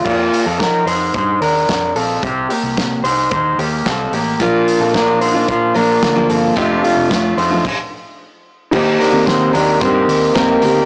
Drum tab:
CC |x-------|--------|--------|----x---|
HH |-oxoxoxo|xoxoxoxo|xo-oxoxo|xoxo----|
SD |--o---o-|--o---o-|--o---o-|--o-----|
BD |o-o-o-o-|o-o-o-o-|o-o-o-o-|o-o-o---|

CC |x-------|
HH |-oxoxoxo|
SD |--o---o-|
BD |o-o-o-o-|